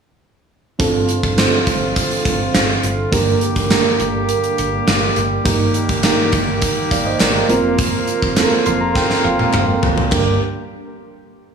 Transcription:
0.79 G1 G2 D3 A3 C4 D4 F4 A4, kick, closed hi-hat
1.09 closed hi-hat
1.23 G1, kick
1.37 C4 D4 F4 C5, snare, closed hi-hat
1.67 G1, kick, closed hi-hat
1.96 kick, closed hi-hat
2.11 closed hi-hat
2.25 G1, kick, closed hi-hat
2.54 G1, snare, closed hi-hat
2.83 G1, closed hi-hat
3.12 G1 G2 G3 A#3 D4 G4 A#4, kick, closed hi-hat
3.41 closed hi-hat
3.56 G1, kick, closed hi-hat
3.70 A#3 D4 G4 A#4, snare, closed hi-hat
4.00 G1, closed hi-hat
4.29 closed hi-hat
4.44 closed hi-hat
4.58 G1, closed hi-hat
4.87 G1, snare, closed hi-hat
5.16 G1, closed hi-hat
5.45 G1 G2 D#3 A#3 D#4 G4 A#4, kick, closed hi-hat
5.74 closed hi-hat
5.89 G1, kick, closed hi-hat
6.03 A#3 D#4 G4 A#4, snare, clap, closed hi-hat
6.32 G1, kick, closed hi-hat
6.62 kick, closed hi-hat
6.91 G1 D5 F5, kick, closed hi-hat
7.05 C5 D#5
7.20 G1 A#4 D5, snare, clap, closed hi-hat
7.35 G4 A#4
7.49 F1 C3 F3 A#3 C4 F4 A#4, closed hi-hat
7.78 kick, closed hi-hat
8.07 closed hi-hat
8.22 F1, kick
8.36 A#3 C4 F4 A4, snare, clap, closed hi-hat
8.44 A#4
8.66 F1 C6, closed hi-hat
8.81 A#5
8.95 G5, kick, snare
9.10 snare
9.24 F1 F5
9.39 high tom
9.53 F1 F5, clap, mid tom
9.82 F1, floor tom
9.98 floor tom
10.11 G1 G2 D3 G3 A#3 D4 G4 A#4, kick, clap, crash

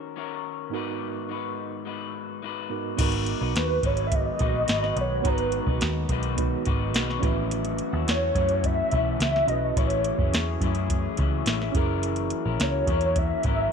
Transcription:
Already playing: D#3 F#3 C#4 D#4 F#4 A#4
0.16 D#3 C#4 F#4 A#4
0.70 G#2 G#3 B3 D#4 F#4
0.74 D#4 F#4 A#4 B4
1.29 G#3 D#4 F#4 B4
1.85 G#3 D#4 F#4 B4
2.42 G#3 D#4 F#4 B4
2.69 G#2 B3 D#4 F#4 A#4
2.97 G#1 D#3 F#3 G#3 B3 D#4 F#4 B4, kick, closed hi-hat, crash
3.02 A#4
3.12 closed hi-hat
3.26 closed hi-hat
3.41 B1 D#4 F#4 B4
3.55 D#2 B4, snare, closed hi-hat
3.83 G#1 G#3 D#4 F#4 B4 C#5, kick, closed hi-hat
3.97 closed hi-hat
4.07 E5
4.12 D#5, kick, closed hi-hat
4.39 A#1 G#3 D#4 F#4 B4, kick, closed hi-hat
4.68 G#1 G#3 D#4 F#4 B4, snare, closed hi-hat
4.81 D#4 F#4 B4, snare
4.96 B1 C#5, closed hi-hat
5.22 G#1 G#3 B3 D#4 F#4 B4, kick, closed hi-hat
5.27 B4 A#5
5.38 closed hi-hat
5.52 closed hi-hat
5.66 B1 D#4 F#4 B4, kick
5.81 D#2, snare, closed hi-hat
6.09 B1 G#3 D#4 F#4 B4, kick, closed hi-hat
6.23 closed hi-hat
6.36 B3 D#4 F#4 B4, kick, closed hi-hat
6.65 G#1 G#3 D#4 F#4 B4, kick, closed hi-hat
6.94 B1 G#3 D#4 F#4 B4, snare, closed hi-hat
7.07 D#4 F#4 B4, snare
7.20 A1 A2 E3 F#3 A3 C#4 E4 F#4, kick, closed hi-hat
7.24 B4
7.51 closed hi-hat
7.65 closed hi-hat
7.78 closed hi-hat
7.93 D#2 F#3 C#4 E4
8.07 E2 C#5, snare, closed hi-hat
8.34 F#2 A2 F#3 C#4 E4, kick, closed hi-hat
8.49 closed hi-hat
8.63 E5, kick, closed hi-hat
8.91 B1 A2 F#3 C#4 E4, kick, closed hi-hat
9.19 C#2 A2 F#3 C#4 E4 E5, snare, closed hi-hat
9.34 F#3 C#4 E4, snare
9.46 B1 C#4 E4 F#4 G#4 D#5, closed hi-hat
9.52 B4
9.77 A1 A2 F#3 C#4 E4 C#5, kick, closed hi-hat
9.90 closed hi-hat
10.04 closed hi-hat
10.19 F#1 F#3 C#4 E4, kick
10.33 E2, snare, closed hi-hat
10.61 F#2 A2 F#3 C#4 E4, kick, closed hi-hat
10.75 closed hi-hat
10.89 kick, closed hi-hat
11.17 C#2 A2 F#3 C#4 E4, kick, closed hi-hat
11.45 A1 A2 F#3 C#4 E4, snare, closed hi-hat
11.61 F#3 C#4 E4, snare
11.72 F#1 E3 F#3 A#3 C#4 E4 F#4 G#4, kick, closed hi-hat
11.77 A#4
12.03 closed hi-hat
12.16 closed hi-hat
12.30 closed hi-hat
12.45 A#1 C#4 E4 A#4
12.60 C#2 C#5, snare, closed hi-hat
12.87 E2 F#3 C#4 E4 A#4, kick, closed hi-hat
13.01 closed hi-hat
13.16 E5, kick, closed hi-hat
13.43 G#1 F#3 C#4 E4 A#4, kick, closed hi-hat

